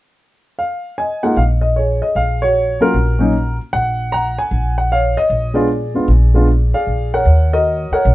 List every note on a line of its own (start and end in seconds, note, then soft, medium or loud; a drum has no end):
0.59 0.95 F5 medium
0.98 1.60 D#5 soft
0.98 1.24 G#5 medium
1.23 1.35 G#3 soft
1.23 1.35 A#3 soft
1.23 1.36 D#4 medium
1.23 1.36 F4 medium
1.23 1.36 F#5 medium
1.36 2.00 A#1 medium
1.36 1.43 F5 medium
1.61 1.74 D#5 medium
1.76 2.52 G#4 soft
1.76 2.02 C#5 medium
2.02 2.14 D#5 medium
2.15 2.79 A#1 medium
2.15 2.42 F5 medium
2.42 2.82 F#4 soft
2.42 2.82 C#5 medium
2.81 2.93 F#3 medium
2.81 2.93 A#3 soft
2.81 2.93 C#4 soft
2.81 2.93 F4 medium
2.81 3.56 F#4 soft
2.81 3.55 A#4 medium
2.94 3.57 A#1 medium
3.19 3.31 F#3 medium
3.19 3.32 A#3 soft
3.19 3.32 C#4 soft
3.19 3.32 D#4 medium
3.73 4.36 A#1 medium
3.73 4.12 F#5 medium
4.12 4.76 F#5 medium
4.12 4.36 A#5 medium
4.38 4.74 G#5 medium
4.51 5.15 A#1 medium
4.78 4.90 F#5 medium
4.92 5.66 C#5 soft
4.92 5.17 F5 medium
5.17 5.57 D#5 medium
5.30 5.93 A#1 medium
5.54 5.67 G#3 medium
5.54 5.67 B3 soft
5.54 5.67 D4 medium
5.54 5.68 F4 medium
5.54 6.73 G#4 soft
5.54 6.73 D5 medium
5.94 6.07 G#3 soft
5.94 6.07 B3 soft
5.94 6.07 D4 soft
5.94 6.07 F4 medium
6.08 6.72 A#1 medium
6.34 6.46 G#3 medium
6.34 6.47 B3 soft
6.34 6.47 D4 soft
6.34 6.47 F4 medium
6.74 7.23 G#4 soft
6.74 7.23 D5 soft
6.74 7.10 F5 medium
6.87 7.23 A#1 medium
7.14 7.52 A#4 soft
7.14 7.88 C#5 medium
7.14 7.50 F#5 medium
7.25 7.87 D#2 medium
7.53 8.15 F#4 soft
7.53 7.92 A#4 soft
7.53 7.93 D#5 medium
7.91 8.15 A#4 medium
7.91 8.15 C#5 medium
7.91 8.15 F#5 medium
7.91 muted upright bass stroke soft
8.05 8.15 A#1 medium